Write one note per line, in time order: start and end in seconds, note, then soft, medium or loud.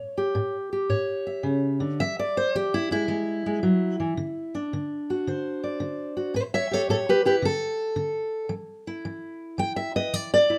0.00 0.33 A2 medium
0.00 0.55 C#5 loud
0.18 0.71 G4 medium
0.35 0.87 A2 medium
0.73 1.98 G4 soft
0.89 1.41 A2 medium
0.89 1.97 C#5 medium
1.27 1.97 E5 soft
1.43 1.81 C#3 medium
1.80 1.99 D3 medium
2.00 2.51 E3 medium
2.00 2.18 E5 loud
2.19 2.37 D5 medium
2.37 2.55 C5 medium
2.55 3.05 E3 medium
2.55 2.73 G4 medium
2.74 2.91 E4 loud
2.91 3.07 G#3 soft
2.91 4.54 E4 loud
3.08 3.59 E3 medium
3.08 3.45 G#3 medium
3.46 3.62 G#3 soft
3.63 3.99 F#3 medium
4.00 4.17 E3 medium
4.17 4.68 D3 medium
4.55 6.33 D4 medium
4.73 5.23 D3 medium
5.10 6.15 F#4 soft
5.27 5.77 D3 medium
5.27 6.33 C5 medium
5.64 6.37 D5 soft
5.80 6.31 D3 medium
6.17 6.33 F#4 soft
6.34 6.85 A2 medium
6.34 6.41 C#5 medium
6.34 6.53 E5 loud
6.54 6.65 C#5 medium
6.54 6.73 E5 medium
6.71 7.07 G4 medium
6.71 6.81 A4 medium
6.71 6.89 C#5 loud
6.89 7.40 A2 medium
6.89 6.95 A4 medium
6.89 7.08 C#5 medium
7.09 7.20 G4 medium
7.09 7.26 B4 medium
7.25 7.41 E4 medium
7.25 7.34 G4 medium
7.25 7.44 B4 medium
7.42 7.93 D3 medium
7.42 8.53 A4 loud
7.96 8.47 D3 medium
8.49 9.01 E3 medium
8.87 10.49 E4 medium
9.05 9.56 E3 medium
9.58 10.10 E3 medium
9.58 9.76 G5 loud
9.76 9.96 E5 medium
9.96 10.14 B4 medium
9.96 10.14 D#5 loud
10.13 10.58 E3 medium
10.13 10.32 D5 loud
10.34 10.58 D5 loud
10.50 10.58 E4 medium